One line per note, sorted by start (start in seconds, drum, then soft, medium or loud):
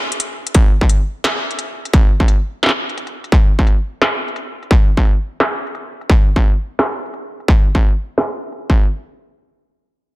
0.12 closed hi-hat soft
0.20 closed hi-hat medium
0.47 closed hi-hat soft
0.55 kick loud
0.55 closed hi-hat medium
0.81 kick medium
0.89 closed hi-hat medium
1.24 snare loud
1.24 closed hi-hat medium
1.51 closed hi-hat soft
1.59 closed hi-hat medium
1.85 closed hi-hat soft
1.93 kick loud
1.93 closed hi-hat medium
2.20 kick medium
2.28 closed hi-hat medium
2.63 snare medium
2.63 closed hi-hat medium
2.66 snare medium
2.69 snare medium
2.89 closed hi-hat soft
2.98 closed hi-hat medium
3.07 closed hi-hat soft
3.24 closed hi-hat soft
3.32 kick loud
3.32 closed hi-hat medium
3.59 kick medium
3.67 closed hi-hat medium
4.02 snare loud
4.02 closed hi-hat medium
4.28 closed hi-hat soft
4.36 closed hi-hat medium
4.63 closed hi-hat soft
4.71 kick loud
4.71 closed hi-hat medium
4.97 kick medium
5.05 closed hi-hat medium
5.40 snare loud
5.40 closed hi-hat medium
5.67 closed hi-hat soft
5.75 closed hi-hat medium
6.01 closed hi-hat soft
6.09 kick loud
6.09 closed hi-hat medium
6.36 kick medium
6.44 closed hi-hat medium
6.79 snare loud
6.79 closed hi-hat medium
7.06 closed hi-hat soft
7.14 closed hi-hat medium
7.40 closed hi-hat soft
7.48 kick loud
7.75 kick medium
7.83 closed hi-hat medium
8.18 snare loud
8.18 closed hi-hat medium
8.52 closed hi-hat medium
8.70 kick medium